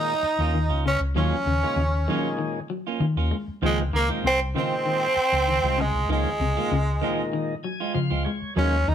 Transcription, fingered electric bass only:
0.23 muted fingered electric bass stroke
0.39 D#2
0.69 C#2
1.00 C#2
1.15 D#2
1.46 D#2
1.76 D#2
3.00 D#3
3.16 D#2
3.48 muted fingered electric bass stroke
3.62 C#2
3.93 C#2
4.24 C2
5.16 muted fingered electric bass stroke
5.32 C#2
5.63 C2
5.94 C2
6.09 C#2
6.40 C#2
6.71 C#2
7.95 C#3
8.11 C#2
8.42 muted fingered electric bass stroke
8.56 D#2
8.88 D#2

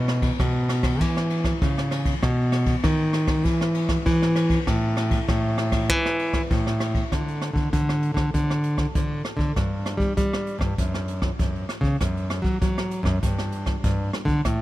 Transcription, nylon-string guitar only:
Already playing: B2
0.40 B2
1.01 E3
1.62 C#3
2.23 B2
2.84 D#3
3.45 E3
4.06 E3
4.67 A2
5.28 A2
5.89 E3
6.51 A2
7.12 D3
7.53 D3
7.73 D3
8.14 D3
8.34 D3
8.95 D3
9.37 D3
9.56 G2
9.97 G3
10.17 G3
10.59 G2
10.78 F#2
11.39 F#2
11.81 C#3
12.01 F#2
12.42 F#3
12.62 F#3
13.03 F#2
13.23 G2
13.84 G2
14.25 D3
14.45 A2

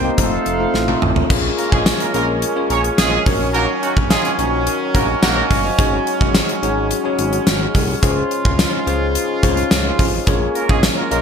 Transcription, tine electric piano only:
Already playing: A#3 C4 D#4 G4 A#4
0.04 A#3 C4 D#4 G4
0.17 A3 C4 D#4 F4
0.59 A3 C4 D#4 F4
0.88 A3 C4 D#4 F4
1.30 C#4 F4 G#4 A#4 C#5
2.14 C#4 F4 G#4 A#4 C#5
2.56 C#4 F4 G#4 A#4 C#5
3.26 C#4 D#4 F#4 A#4 C#5
4.38 C#4 D#4 F#4 A#4 C#5
4.94 C#4 D#4 F#4 A#4 C#5
5.22 D#5 F#5
5.36 C#5 F5
5.65 C5 D#5
5.78 C#4 D#4 F#4 G#4 C#5
6.62 C#4 D#4 F#4 G#4 C#5
7.04 C#4 D#4 F#4 G#4 C#5
8.02 C#4 F4 G#4 C5 C#5
8.86 C#4 F4 G#4 C5 C#5
9.43 C#4 F4 G#4 C5 C#5
10.27 C#4 F4 G#4 A#4 C#5
11.10 C#4 F4 G#4 A#4 D#5

